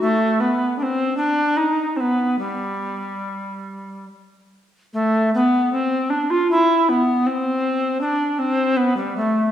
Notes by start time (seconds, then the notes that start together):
0.01 A3
0.40 B3
0.78 D4
0.83 C4
1.17 D4
1.57 D#4
1.97 B3 C4
2.39 G3
4.93 A3
5.34 B3
5.72 C4
6.10 D4
6.30 F4
6.51 E4
6.89 B3
7.27 C4
8.01 D4
8.39 C4
8.77 B3
8.97 G3
9.17 A3